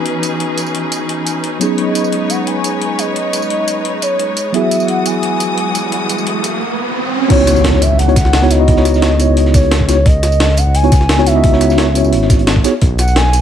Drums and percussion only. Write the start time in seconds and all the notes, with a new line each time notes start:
0.06 closed hi-hat
0.23 closed hi-hat, tambourine
0.40 closed hi-hat
0.58 closed hi-hat, tambourine
0.66 tambourine
0.75 closed hi-hat
0.92 closed hi-hat, tambourine
1.09 closed hi-hat
1.27 closed hi-hat, tambourine
1.44 closed hi-hat
1.61 closed hi-hat, tambourine
1.78 closed hi-hat
1.95 closed hi-hat, tambourine
2.04 tambourine
2.12 closed hi-hat
2.30 closed hi-hat, tambourine
2.47 closed hi-hat
2.64 closed hi-hat, tambourine
2.82 closed hi-hat
2.99 closed hi-hat, tambourine
3.16 closed hi-hat
3.33 closed hi-hat, tambourine
3.42 tambourine
3.50 closed hi-hat
3.68 closed hi-hat, tambourine
3.85 closed hi-hat
4.02 closed hi-hat, tambourine
4.19 closed hi-hat
4.37 closed hi-hat, tambourine
4.54 closed hi-hat
4.71 closed hi-hat, tambourine
4.80 tambourine
4.88 closed hi-hat
5.06 closed hi-hat, tambourine
5.23 closed hi-hat
5.40 closed hi-hat, tambourine
5.58 closed hi-hat
5.75 closed hi-hat, tambourine
5.92 closed hi-hat
6.09 closed hi-hat, tambourine
6.18 tambourine
6.27 closed hi-hat
6.44 closed hi-hat, tambourine
7.30 kick, closed hi-hat, crash
7.47 snare, closed hi-hat, tambourine
7.56 closed hi-hat, tambourine
7.64 snare, closed hi-hat
7.73 snare
7.82 closed hi-hat, tambourine
7.99 closed hi-hat
8.09 closed hi-hat
8.16 kick, snare, closed hi-hat, tambourine
8.25 snare
8.33 snare, closed hi-hat
8.42 snare
8.50 snare, closed hi-hat, tambourine
8.68 kick, closed hi-hat
8.76 snare
8.85 snare, closed hi-hat, tambourine
8.94 snare, tambourine
9.02 snare, closed hi-hat
9.20 closed hi-hat, tambourine
9.37 closed hi-hat
9.45 snare
9.54 kick, snare, closed hi-hat, tambourine
9.63 closed hi-hat
9.71 snare, closed hi-hat
9.80 kick
9.89 snare, closed hi-hat, tambourine
10.06 kick, closed hi-hat
10.23 snare, closed hi-hat, tambourine
10.32 closed hi-hat, tambourine
10.40 snare, closed hi-hat
10.49 snare
10.57 closed hi-hat, tambourine
10.75 closed hi-hat
10.84 closed hi-hat
10.91 kick, snare, closed hi-hat, tambourine
11.01 snare
11.09 snare, closed hi-hat
11.18 snare
11.26 snare, closed hi-hat, tambourine
11.44 kick, closed hi-hat
11.52 snare
11.61 snare, closed hi-hat, tambourine
11.70 snare, tambourine
11.78 snare, closed hi-hat
11.95 closed hi-hat, tambourine
12.04 tambourine
12.13 closed hi-hat
12.22 snare
12.30 kick, snare, closed hi-hat, tambourine
12.39 closed hi-hat
12.47 snare, closed hi-hat
12.56 kick
12.64 snare, closed hi-hat, tambourine
12.82 kick, closed hi-hat
12.98 snare, closed hi-hat, tambourine
13.08 closed hi-hat, tambourine
13.16 snare, closed hi-hat
13.25 snare
13.33 closed hi-hat, tambourine